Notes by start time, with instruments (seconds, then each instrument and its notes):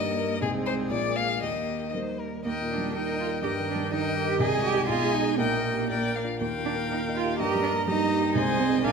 Already playing: grand piano G2 A#3 D#4 G4, cello G3, viola A#3, violin A#4 D#5
0.17 violin A#4
0.41 grand piano C2 G#3 D#4 G#4, cello G#3, viola C4, violin G#4
0.66 violin C5
0.89 grand piano A#1 G#3 F4 A#4, cello F3, viola A#3, violin D5
1.16 violin F5
1.42 grand piano D#2, cello D#3, viola A#3, violin G4 D#5
1.95 grand piano G3 D#4 A#4, violin C5
2.20 violin A#4
2.44 grand piano D#2, cello A#3, viola A#4, violin D#5 G5
2.61 grand piano A#2
2.71 cello D4
2.78 grand piano G3
2.94 grand piano A#2, cello D#4, viola A#4, violin D#5 G5
3.11 grand piano D#4
3.20 cello F4
3.27 grand piano A#4
3.42 grand piano G2, cello G4, viola A#4, violin D#5 G5
3.60 grand piano D#3
3.69 cello D4
3.75 grand piano G3
3.91 grand piano D#3, cello D#4, viola A#4, violin D#5 G5
4.08 grand piano D#4
4.17 cello G4
4.24 grand piano A#4
4.39 grand piano C2, cello G#4, viola G#4, violin D#5 G#5
4.57 grand piano G#3
4.64 cello G4
4.73 grand piano D#4 G#4
4.88 grand piano B1, cello F4, viola G#4, violin D#5 G#5
5.05 grand piano G#3
5.14 cello D#4
5.21 grand piano D#4 G#4
5.38 grand piano A#1, cello A#3, viola A#4, violin D#5 G5
5.56 grand piano A#3
5.73 grand piano D#4 G4
5.90 grand piano A#1, viola A#4, violin D5 G5
6.07 grand piano A#3
6.16 violin F5
6.24 grand piano D4 F4
6.41 grand piano D#2, cello A#3, viola A#4, violin F5 G5
6.58 grand piano A#2
6.65 cello D4
6.74 grand piano A#3
6.91 grand piano A#2, cello D#4
7.09 grand piano D#4
7.16 cello F4
7.24 grand piano G4
7.39 grand piano G2, cello G4, viola A#4, violin D#5 A#5
7.55 grand piano G3
7.63 cello D4
7.71 grand piano A#3
7.87 grand piano G3, cello D#4, viola G4, violin D#5 A#5
8.04 grand piano D#4
8.19 grand piano G4
8.34 grand piano C2, cello G#3, viola C5, violin D#5 G#5
8.51 grand piano G#3
8.60 cello C4
8.68 grand piano D#4 G#4
8.84 grand piano A#1, cello D4, viola A#4, violin F5 G#5